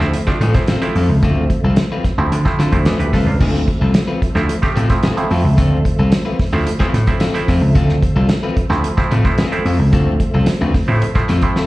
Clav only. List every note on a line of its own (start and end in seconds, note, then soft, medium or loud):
0.00 0.18 F3 loud
0.00 0.18 A3 medium
0.00 0.18 C4 medium
0.00 0.18 E4 loud
0.27 0.45 F3 loud
0.27 0.45 A3 medium
0.27 0.45 C4 medium
0.27 0.45 D4 loud
0.54 0.72 F3 medium
0.54 0.72 A3 medium
0.54 0.72 C4 medium
0.54 0.72 E4 medium
0.82 1.52 F3 loud
0.82 1.53 A3 medium
0.82 1.52 C4 medium
0.82 1.53 E4 loud
2.18 2.36 F3 loud
2.18 2.36 A3 medium
2.18 2.36 C4 medium
2.18 2.36 E4 loud
2.45 2.63 F3 medium
2.45 2.63 A3 medium
2.45 2.63 C4 medium
2.45 2.63 E4 loud
2.72 2.90 F3 medium
2.72 2.90 A3 medium
2.72 2.90 C4 medium
2.72 2.86 E4 medium
2.86 3.11 A4 medium
2.86 2.98 B4 medium
2.86 2.99 D5 medium
2.99 3.13 G4 medium
2.99 3.12 B4 medium
3.13 3.25 F4 medium
3.13 3.26 A4 medium
3.13 3.38 B4 medium
3.27 3.53 D4 medium
3.27 3.53 F4 medium
4.35 4.53 F3 loud
4.35 4.53 A3 medium
4.35 4.53 C4 medium
4.35 4.53 E4 loud
4.62 4.80 F3 loud
4.62 4.80 A3 medium
4.62 4.80 C4 medium
4.62 4.80 G4 loud
4.90 5.07 F3 medium
4.90 5.08 A3 medium
4.90 5.08 C4 medium
4.90 5.08 E4 medium
5.17 5.88 F3 medium
5.17 5.88 A3 medium
5.17 5.88 C4 loud
5.17 5.88 E4 loud
6.53 6.70 F3 loud
6.53 6.71 A3 medium
6.53 6.71 C4 medium
6.53 6.71 E4 loud
6.80 6.98 F3 medium
6.80 6.98 A3 medium
6.80 6.98 C4 medium
6.80 6.98 E4 loud
7.07 7.25 F3 medium
7.07 7.25 A3 medium
7.07 7.25 C4 medium
7.07 7.25 E4 loud
7.34 8.05 F3 loud
7.34 8.05 A3 medium
7.34 8.05 C4 medium
7.34 8.05 E4 loud
8.70 8.88 F3 loud
8.70 8.88 A3 loud
8.70 8.88 C4 medium
8.70 8.88 E4 loud
8.97 9.15 F3 loud
8.97 9.15 A3 medium
8.97 9.15 C4 medium
8.97 9.15 E4 loud
9.25 9.42 F3 medium
9.25 9.42 A3 medium
9.25 9.42 C4 medium
9.25 9.43 E4 medium
9.52 10.22 F3 loud
9.52 10.22 A3 medium
9.52 10.23 C4 medium
9.52 10.23 E4 loud
10.88 11.06 F3 medium
10.88 11.06 A3 medium
10.88 11.06 C4 medium
10.88 11.06 E4 loud
11.15 11.33 F3 loud
11.15 11.33 A3 medium
11.15 11.33 C4 medium
11.15 11.33 E4 loud
11.43 11.60 F3 medium
11.43 11.60 A3 medium
11.43 11.60 C4 medium
11.43 11.60 E4 loud